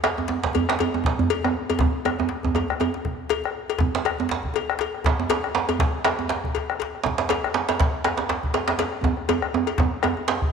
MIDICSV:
0, 0, Header, 1, 4, 480
1, 0, Start_track
1, 0, Tempo, 501672
1, 1004, Time_signature, 4, 2, 24, 8
1, 5320, Tempo, 496278
1, 10117, End_track
2, 0, Start_track
2, 0, Title_t, "Bombo"
2, 37, Note_on_c, 9, 37, 78
2, 133, Note_off_c, 9, 37, 0
2, 181, Note_on_c, 9, 37, 29
2, 277, Note_off_c, 9, 37, 0
2, 421, Note_on_c, 9, 43, 66
2, 517, Note_off_c, 9, 43, 0
2, 527, Note_on_c, 9, 37, 27
2, 623, Note_off_c, 9, 37, 0
2, 659, Note_on_c, 9, 37, 80
2, 755, Note_off_c, 9, 37, 0
2, 902, Note_on_c, 9, 37, 34
2, 997, Note_off_c, 9, 37, 0
2, 1004, Note_on_c, 9, 43, 93
2, 1099, Note_off_c, 9, 43, 0
2, 1382, Note_on_c, 9, 37, 71
2, 1478, Note_off_c, 9, 37, 0
2, 1622, Note_on_c, 9, 37, 33
2, 1718, Note_off_c, 9, 37, 0
2, 1727, Note_on_c, 9, 37, 35
2, 1727, Note_on_c, 9, 43, 104
2, 1823, Note_off_c, 9, 37, 0
2, 1823, Note_off_c, 9, 43, 0
2, 1970, Note_on_c, 9, 37, 90
2, 2066, Note_off_c, 9, 37, 0
2, 2341, Note_on_c, 9, 43, 65
2, 2437, Note_off_c, 9, 43, 0
2, 2452, Note_on_c, 9, 37, 30
2, 2547, Note_off_c, 9, 37, 0
2, 2585, Note_on_c, 9, 37, 82
2, 2681, Note_off_c, 9, 37, 0
2, 2691, Note_on_c, 9, 37, 26
2, 2786, Note_off_c, 9, 37, 0
2, 2925, Note_on_c, 9, 37, 24
2, 2925, Note_on_c, 9, 43, 78
2, 3021, Note_off_c, 9, 37, 0
2, 3021, Note_off_c, 9, 43, 0
2, 3305, Note_on_c, 9, 37, 68
2, 3401, Note_off_c, 9, 37, 0
2, 3543, Note_on_c, 9, 37, 30
2, 3639, Note_off_c, 9, 37, 0
2, 3645, Note_on_c, 9, 43, 103
2, 3741, Note_off_c, 9, 43, 0
2, 3886, Note_on_c, 9, 37, 83
2, 3982, Note_off_c, 9, 37, 0
2, 4021, Note_on_c, 9, 37, 32
2, 4117, Note_off_c, 9, 37, 0
2, 4258, Note_on_c, 9, 43, 76
2, 4353, Note_off_c, 9, 43, 0
2, 4365, Note_on_c, 9, 37, 31
2, 4461, Note_off_c, 9, 37, 0
2, 4493, Note_on_c, 9, 37, 86
2, 4588, Note_off_c, 9, 37, 0
2, 4731, Note_on_c, 9, 37, 33
2, 4826, Note_off_c, 9, 37, 0
2, 4840, Note_on_c, 9, 37, 27
2, 4840, Note_on_c, 9, 43, 90
2, 4935, Note_off_c, 9, 37, 0
2, 4935, Note_off_c, 9, 43, 0
2, 5206, Note_on_c, 9, 37, 69
2, 5302, Note_off_c, 9, 37, 0
2, 5446, Note_on_c, 9, 37, 29
2, 5543, Note_off_c, 9, 37, 0
2, 5545, Note_on_c, 9, 43, 108
2, 5642, Note_off_c, 9, 43, 0
2, 5794, Note_on_c, 9, 37, 105
2, 5891, Note_off_c, 9, 37, 0
2, 5930, Note_on_c, 9, 37, 29
2, 6026, Note_off_c, 9, 37, 0
2, 6173, Note_on_c, 9, 43, 80
2, 6269, Note_off_c, 9, 43, 0
2, 6287, Note_on_c, 9, 37, 30
2, 6384, Note_off_c, 9, 37, 0
2, 6419, Note_on_c, 9, 37, 78
2, 6516, Note_off_c, 9, 37, 0
2, 6664, Note_on_c, 9, 37, 31
2, 6760, Note_off_c, 9, 37, 0
2, 6768, Note_on_c, 9, 37, 26
2, 6768, Note_on_c, 9, 43, 88
2, 6865, Note_off_c, 9, 37, 0
2, 6865, Note_off_c, 9, 43, 0
2, 7142, Note_on_c, 9, 37, 80
2, 7238, Note_off_c, 9, 37, 0
2, 7387, Note_on_c, 9, 37, 28
2, 7484, Note_off_c, 9, 37, 0
2, 7489, Note_on_c, 9, 43, 97
2, 7585, Note_off_c, 9, 43, 0
2, 7727, Note_on_c, 9, 37, 91
2, 7823, Note_off_c, 9, 37, 0
2, 7863, Note_on_c, 9, 37, 27
2, 7959, Note_off_c, 9, 37, 0
2, 8103, Note_on_c, 9, 43, 81
2, 8200, Note_off_c, 9, 43, 0
2, 8204, Note_on_c, 9, 37, 32
2, 8301, Note_off_c, 9, 37, 0
2, 8334, Note_on_c, 9, 37, 77
2, 8431, Note_off_c, 9, 37, 0
2, 8575, Note_on_c, 9, 37, 30
2, 8672, Note_off_c, 9, 37, 0
2, 8676, Note_on_c, 9, 37, 26
2, 8676, Note_on_c, 9, 43, 87
2, 8773, Note_off_c, 9, 37, 0
2, 8773, Note_off_c, 9, 43, 0
2, 8812, Note_on_c, 9, 37, 33
2, 8909, Note_off_c, 9, 37, 0
2, 8918, Note_on_c, 9, 37, 29
2, 9015, Note_off_c, 9, 37, 0
2, 9057, Note_on_c, 9, 37, 76
2, 9154, Note_off_c, 9, 37, 0
2, 9292, Note_on_c, 9, 37, 29
2, 9389, Note_off_c, 9, 37, 0
2, 9402, Note_on_c, 9, 43, 101
2, 9499, Note_off_c, 9, 43, 0
2, 9641, Note_on_c, 9, 37, 89
2, 9738, Note_off_c, 9, 37, 0
2, 10020, Note_on_c, 9, 43, 85
2, 10116, Note_off_c, 9, 43, 0
2, 10117, End_track
3, 0, Start_track
3, 0, Title_t, "Djembe"
3, 35, Note_on_c, 9, 62, 94
3, 131, Note_off_c, 9, 62, 0
3, 166, Note_on_c, 9, 63, 57
3, 173, Note_off_c, 9, 63, 0
3, 173, Note_on_c, 9, 63, 72
3, 268, Note_on_c, 9, 62, 72
3, 269, Note_off_c, 9, 63, 0
3, 276, Note_on_c, 9, 63, 77
3, 363, Note_off_c, 9, 62, 0
3, 372, Note_off_c, 9, 63, 0
3, 412, Note_on_c, 9, 64, 58
3, 416, Note_on_c, 9, 62, 73
3, 507, Note_off_c, 9, 64, 0
3, 508, Note_on_c, 9, 63, 70
3, 512, Note_off_c, 9, 62, 0
3, 530, Note_on_c, 9, 64, 78
3, 603, Note_off_c, 9, 63, 0
3, 626, Note_off_c, 9, 64, 0
3, 665, Note_on_c, 9, 62, 99
3, 754, Note_off_c, 9, 62, 0
3, 754, Note_on_c, 9, 62, 64
3, 771, Note_on_c, 9, 63, 79
3, 850, Note_off_c, 9, 62, 0
3, 867, Note_off_c, 9, 63, 0
3, 903, Note_on_c, 9, 63, 78
3, 992, Note_off_c, 9, 63, 0
3, 992, Note_on_c, 9, 63, 68
3, 992, Note_on_c, 9, 64, 66
3, 1015, Note_on_c, 9, 62, 75
3, 1088, Note_off_c, 9, 63, 0
3, 1088, Note_off_c, 9, 64, 0
3, 1110, Note_off_c, 9, 62, 0
3, 1141, Note_on_c, 9, 64, 91
3, 1237, Note_off_c, 9, 64, 0
3, 1367, Note_on_c, 9, 62, 21
3, 1367, Note_on_c, 9, 63, 52
3, 1383, Note_off_c, 9, 63, 0
3, 1383, Note_on_c, 9, 63, 97
3, 1463, Note_off_c, 9, 62, 0
3, 1476, Note_on_c, 9, 62, 24
3, 1479, Note_off_c, 9, 63, 0
3, 1571, Note_off_c, 9, 62, 0
3, 1626, Note_on_c, 9, 63, 75
3, 1710, Note_off_c, 9, 63, 0
3, 1710, Note_on_c, 9, 62, 71
3, 1710, Note_on_c, 9, 63, 75
3, 1710, Note_on_c, 9, 64, 71
3, 1726, Note_off_c, 9, 63, 0
3, 1726, Note_on_c, 9, 63, 93
3, 1805, Note_off_c, 9, 62, 0
3, 1805, Note_off_c, 9, 64, 0
3, 1822, Note_off_c, 9, 63, 0
3, 1956, Note_on_c, 9, 62, 22
3, 1965, Note_on_c, 9, 63, 73
3, 2051, Note_off_c, 9, 62, 0
3, 2061, Note_off_c, 9, 63, 0
3, 2093, Note_on_c, 9, 62, 21
3, 2093, Note_on_c, 9, 63, 58
3, 2101, Note_off_c, 9, 63, 0
3, 2101, Note_on_c, 9, 63, 97
3, 2188, Note_off_c, 9, 62, 0
3, 2188, Note_on_c, 9, 62, 71
3, 2196, Note_off_c, 9, 63, 0
3, 2284, Note_off_c, 9, 62, 0
3, 2327, Note_on_c, 9, 64, 57
3, 2339, Note_on_c, 9, 63, 77
3, 2423, Note_off_c, 9, 64, 0
3, 2433, Note_on_c, 9, 64, 41
3, 2435, Note_off_c, 9, 63, 0
3, 2437, Note_on_c, 9, 63, 90
3, 2528, Note_off_c, 9, 64, 0
3, 2533, Note_off_c, 9, 63, 0
3, 2567, Note_on_c, 9, 64, 51
3, 2663, Note_off_c, 9, 64, 0
3, 2678, Note_on_c, 9, 62, 59
3, 2683, Note_on_c, 9, 63, 86
3, 2773, Note_off_c, 9, 62, 0
3, 2779, Note_off_c, 9, 63, 0
3, 2813, Note_on_c, 9, 62, 48
3, 2909, Note_off_c, 9, 62, 0
3, 2916, Note_on_c, 9, 62, 25
3, 2916, Note_on_c, 9, 63, 79
3, 2916, Note_on_c, 9, 64, 70
3, 3012, Note_off_c, 9, 62, 0
3, 3012, Note_off_c, 9, 63, 0
3, 3012, Note_off_c, 9, 64, 0
3, 3152, Note_on_c, 9, 62, 74
3, 3248, Note_off_c, 9, 62, 0
3, 3288, Note_on_c, 9, 63, 52
3, 3383, Note_off_c, 9, 63, 0
3, 3522, Note_on_c, 9, 62, 24
3, 3618, Note_off_c, 9, 62, 0
3, 3621, Note_on_c, 9, 62, 73
3, 3621, Note_on_c, 9, 63, 76
3, 3621, Note_on_c, 9, 64, 72
3, 3639, Note_off_c, 9, 63, 0
3, 3639, Note_on_c, 9, 63, 68
3, 3717, Note_off_c, 9, 62, 0
3, 3717, Note_off_c, 9, 64, 0
3, 3735, Note_off_c, 9, 63, 0
3, 3778, Note_on_c, 9, 62, 78
3, 3873, Note_off_c, 9, 62, 0
3, 3873, Note_on_c, 9, 62, 22
3, 3969, Note_off_c, 9, 62, 0
3, 4004, Note_on_c, 9, 63, 61
3, 4017, Note_off_c, 9, 63, 0
3, 4017, Note_on_c, 9, 63, 79
3, 4105, Note_on_c, 9, 62, 76
3, 4113, Note_off_c, 9, 63, 0
3, 4128, Note_off_c, 9, 62, 0
3, 4128, Note_on_c, 9, 62, 77
3, 4223, Note_off_c, 9, 62, 0
3, 4239, Note_on_c, 9, 64, 54
3, 4334, Note_off_c, 9, 64, 0
3, 4342, Note_on_c, 9, 63, 66
3, 4438, Note_off_c, 9, 63, 0
3, 4477, Note_on_c, 9, 62, 25
3, 4573, Note_off_c, 9, 62, 0
3, 4580, Note_on_c, 9, 62, 81
3, 4676, Note_off_c, 9, 62, 0
3, 4826, Note_on_c, 9, 62, 27
3, 4826, Note_on_c, 9, 63, 82
3, 4826, Note_on_c, 9, 64, 77
3, 4841, Note_off_c, 9, 62, 0
3, 4841, Note_on_c, 9, 62, 93
3, 4922, Note_off_c, 9, 63, 0
3, 4922, Note_off_c, 9, 64, 0
3, 4936, Note_off_c, 9, 62, 0
3, 4971, Note_on_c, 9, 63, 84
3, 5066, Note_on_c, 9, 62, 69
3, 5067, Note_off_c, 9, 63, 0
3, 5075, Note_off_c, 9, 62, 0
3, 5075, Note_on_c, 9, 62, 77
3, 5171, Note_off_c, 9, 62, 0
3, 5201, Note_on_c, 9, 63, 53
3, 5297, Note_off_c, 9, 63, 0
3, 5307, Note_on_c, 9, 62, 95
3, 5404, Note_off_c, 9, 62, 0
3, 5442, Note_on_c, 9, 63, 76
3, 5538, Note_off_c, 9, 63, 0
3, 5551, Note_on_c, 9, 62, 86
3, 5551, Note_on_c, 9, 63, 85
3, 5551, Note_on_c, 9, 64, 81
3, 5648, Note_off_c, 9, 62, 0
3, 5648, Note_off_c, 9, 63, 0
3, 5648, Note_off_c, 9, 64, 0
3, 5789, Note_on_c, 9, 62, 114
3, 5798, Note_off_c, 9, 62, 0
3, 5798, Note_on_c, 9, 62, 27
3, 5894, Note_off_c, 9, 62, 0
3, 5926, Note_on_c, 9, 63, 77
3, 5932, Note_off_c, 9, 63, 0
3, 5932, Note_on_c, 9, 63, 57
3, 6029, Note_off_c, 9, 63, 0
3, 6029, Note_on_c, 9, 62, 86
3, 6036, Note_off_c, 9, 62, 0
3, 6036, Note_on_c, 9, 62, 83
3, 6133, Note_off_c, 9, 62, 0
3, 6179, Note_on_c, 9, 64, 68
3, 6276, Note_off_c, 9, 64, 0
3, 6289, Note_on_c, 9, 63, 86
3, 6386, Note_off_c, 9, 63, 0
3, 6536, Note_on_c, 9, 62, 80
3, 6632, Note_off_c, 9, 62, 0
3, 6747, Note_on_c, 9, 62, 78
3, 6774, Note_off_c, 9, 62, 0
3, 6774, Note_on_c, 9, 62, 25
3, 6774, Note_on_c, 9, 63, 83
3, 6774, Note_on_c, 9, 64, 86
3, 6870, Note_off_c, 9, 62, 0
3, 6870, Note_off_c, 9, 63, 0
3, 6870, Note_off_c, 9, 64, 0
3, 6888, Note_on_c, 9, 62, 84
3, 6985, Note_off_c, 9, 62, 0
3, 6993, Note_on_c, 9, 62, 75
3, 7008, Note_off_c, 9, 62, 0
3, 7008, Note_on_c, 9, 62, 89
3, 7105, Note_off_c, 9, 62, 0
3, 7146, Note_on_c, 9, 63, 58
3, 7237, Note_on_c, 9, 62, 85
3, 7243, Note_off_c, 9, 63, 0
3, 7334, Note_off_c, 9, 62, 0
3, 7376, Note_on_c, 9, 62, 83
3, 7392, Note_off_c, 9, 62, 0
3, 7392, Note_on_c, 9, 62, 23
3, 7482, Note_off_c, 9, 62, 0
3, 7482, Note_on_c, 9, 62, 69
3, 7489, Note_off_c, 9, 62, 0
3, 7489, Note_on_c, 9, 62, 86
3, 7489, Note_on_c, 9, 63, 85
3, 7489, Note_on_c, 9, 64, 84
3, 7586, Note_off_c, 9, 62, 0
3, 7586, Note_off_c, 9, 63, 0
3, 7586, Note_off_c, 9, 64, 0
3, 7723, Note_on_c, 9, 62, 87
3, 7729, Note_off_c, 9, 62, 0
3, 7729, Note_on_c, 9, 62, 25
3, 7825, Note_off_c, 9, 62, 0
3, 7848, Note_on_c, 9, 62, 70
3, 7862, Note_on_c, 9, 63, 72
3, 7945, Note_off_c, 9, 62, 0
3, 7959, Note_off_c, 9, 63, 0
3, 7963, Note_on_c, 9, 62, 74
3, 7967, Note_off_c, 9, 62, 0
3, 7967, Note_on_c, 9, 62, 90
3, 8063, Note_off_c, 9, 62, 0
3, 8098, Note_on_c, 9, 64, 58
3, 8195, Note_off_c, 9, 64, 0
3, 8199, Note_on_c, 9, 63, 77
3, 8202, Note_on_c, 9, 62, 77
3, 8296, Note_off_c, 9, 63, 0
3, 8299, Note_off_c, 9, 62, 0
3, 8334, Note_on_c, 9, 62, 82
3, 8431, Note_off_c, 9, 62, 0
3, 8442, Note_on_c, 9, 62, 82
3, 8539, Note_off_c, 9, 62, 0
3, 8686, Note_on_c, 9, 63, 97
3, 8692, Note_off_c, 9, 63, 0
3, 8692, Note_on_c, 9, 62, 30
3, 8692, Note_on_c, 9, 63, 89
3, 8692, Note_on_c, 9, 64, 82
3, 8788, Note_off_c, 9, 62, 0
3, 8788, Note_off_c, 9, 63, 0
3, 8788, Note_off_c, 9, 64, 0
3, 8817, Note_on_c, 9, 62, 24
3, 8914, Note_off_c, 9, 62, 0
3, 8925, Note_on_c, 9, 62, 80
3, 8929, Note_on_c, 9, 63, 102
3, 9022, Note_off_c, 9, 62, 0
3, 9026, Note_off_c, 9, 63, 0
3, 9062, Note_on_c, 9, 62, 24
3, 9062, Note_on_c, 9, 63, 57
3, 9159, Note_off_c, 9, 62, 0
3, 9159, Note_off_c, 9, 63, 0
3, 9165, Note_on_c, 9, 62, 26
3, 9172, Note_on_c, 9, 63, 98
3, 9262, Note_off_c, 9, 62, 0
3, 9269, Note_off_c, 9, 63, 0
3, 9401, Note_on_c, 9, 62, 82
3, 9401, Note_on_c, 9, 63, 78
3, 9417, Note_off_c, 9, 63, 0
3, 9417, Note_on_c, 9, 63, 99
3, 9497, Note_off_c, 9, 62, 0
3, 9514, Note_off_c, 9, 63, 0
3, 9652, Note_on_c, 9, 63, 108
3, 9749, Note_off_c, 9, 63, 0
3, 9778, Note_on_c, 9, 63, 64
3, 9875, Note_off_c, 9, 63, 0
3, 9883, Note_on_c, 9, 62, 72
3, 9884, Note_off_c, 9, 62, 0
3, 9884, Note_on_c, 9, 62, 98
3, 9981, Note_off_c, 9, 62, 0
3, 10018, Note_on_c, 9, 62, 24
3, 10018, Note_on_c, 9, 64, 53
3, 10115, Note_off_c, 9, 62, 0
3, 10115, Note_off_c, 9, 64, 0
3, 10117, End_track
4, 0, Start_track
4, 0, Title_t, "Drums"
4, 37, Note_on_c, 9, 56, 46
4, 133, Note_off_c, 9, 56, 0
4, 523, Note_on_c, 9, 56, 44
4, 619, Note_off_c, 9, 56, 0
4, 769, Note_on_c, 9, 56, 46
4, 864, Note_off_c, 9, 56, 0
4, 1245, Note_on_c, 9, 56, 61
4, 1341, Note_off_c, 9, 56, 0
4, 1623, Note_on_c, 9, 56, 47
4, 1718, Note_off_c, 9, 56, 0
4, 1964, Note_on_c, 9, 56, 42
4, 2059, Note_off_c, 9, 56, 0
4, 2446, Note_on_c, 9, 56, 43
4, 2541, Note_off_c, 9, 56, 0
4, 2686, Note_on_c, 9, 56, 42
4, 2782, Note_off_c, 9, 56, 0
4, 3160, Note_on_c, 9, 56, 54
4, 3255, Note_off_c, 9, 56, 0
4, 3536, Note_on_c, 9, 56, 46
4, 3632, Note_off_c, 9, 56, 0
4, 3877, Note_on_c, 9, 56, 42
4, 3972, Note_off_c, 9, 56, 0
4, 4360, Note_on_c, 9, 56, 48
4, 4456, Note_off_c, 9, 56, 0
4, 4601, Note_on_c, 9, 56, 45
4, 4696, Note_off_c, 9, 56, 0
4, 5070, Note_on_c, 9, 56, 60
4, 5165, Note_off_c, 9, 56, 0
4, 5443, Note_on_c, 9, 56, 49
4, 5540, Note_off_c, 9, 56, 0
4, 5794, Note_on_c, 9, 56, 48
4, 5891, Note_off_c, 9, 56, 0
4, 6274, Note_on_c, 9, 56, 44
4, 6371, Note_off_c, 9, 56, 0
4, 6516, Note_on_c, 9, 56, 37
4, 6613, Note_off_c, 9, 56, 0
4, 7002, Note_on_c, 9, 56, 49
4, 7099, Note_off_c, 9, 56, 0
4, 7376, Note_on_c, 9, 56, 43
4, 7473, Note_off_c, 9, 56, 0
4, 7726, Note_on_c, 9, 56, 44
4, 7823, Note_off_c, 9, 56, 0
4, 8202, Note_on_c, 9, 56, 42
4, 8299, Note_off_c, 9, 56, 0
4, 8450, Note_on_c, 9, 56, 45
4, 8547, Note_off_c, 9, 56, 0
4, 8926, Note_on_c, 9, 56, 56
4, 9023, Note_off_c, 9, 56, 0
4, 9297, Note_on_c, 9, 56, 45
4, 9393, Note_off_c, 9, 56, 0
4, 9645, Note_on_c, 9, 56, 46
4, 9741, Note_off_c, 9, 56, 0
4, 10117, End_track
0, 0, End_of_file